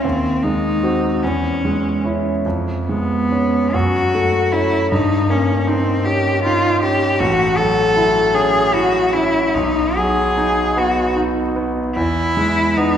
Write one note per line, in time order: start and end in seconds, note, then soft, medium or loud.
0.03 1.19 D#2 soft
0.03 0.45 C4 soft
0.43 1.06 G#3 soft
0.43 1.25 D#4 soft
0.83 1.19 C4 soft
0.83 1.19 F#4 soft
1.23 2.42 E2 soft
1.23 2.04 C#4 soft
1.65 2.29 G#3 soft
2.04 2.41 C#4 soft
2.04 2.41 E4 soft
2.46 3.70 F2 soft
2.87 3.58 G#3 soft
2.87 3.75 B3 soft
3.32 3.70 C#4 soft
3.73 4.88 F#2 soft
3.73 4.54 F#4 medium
4.15 4.76 A3 soft
4.52 4.87 C#4 soft
4.52 4.90 E4 medium
4.92 7.17 G2 soft
4.92 5.32 D#4 medium
5.30 5.91 A#3 soft
5.30 5.69 C#4 soft
5.67 6.07 C4 medium
5.67 6.29 D#4 soft
6.05 6.68 C#4 soft
6.05 6.43 G4 medium
6.44 7.05 D#4 soft
6.44 6.81 F4 medium
6.82 7.21 C#4 soft
6.82 7.21 G4 medium
7.19 9.52 A1 soft
7.19 7.59 F#4 medium
7.57 8.20 F#3 soft
7.57 8.36 A4 medium
7.97 8.58 E4 soft
8.34 8.97 C#4 soft
8.34 8.76 G#4 medium
8.74 9.39 E4 soft
8.74 9.15 F#4 medium
9.13 9.56 C#4 soft
9.13 9.56 E4 medium
9.54 11.92 B1 soft
9.54 9.98 D#4 medium
9.97 10.61 F#3 soft
9.97 10.79 G#4 medium
10.37 11.01 D#4 soft
10.77 11.40 B3 soft
10.77 11.17 F#4 medium
11.16 11.80 D#4 soft
11.56 11.96 B3 soft
11.95 12.97 E2 soft
11.95 12.78 E4 medium
12.37 12.97 G#3 soft
12.77 12.97 B3 soft
12.77 12.97 D#4 medium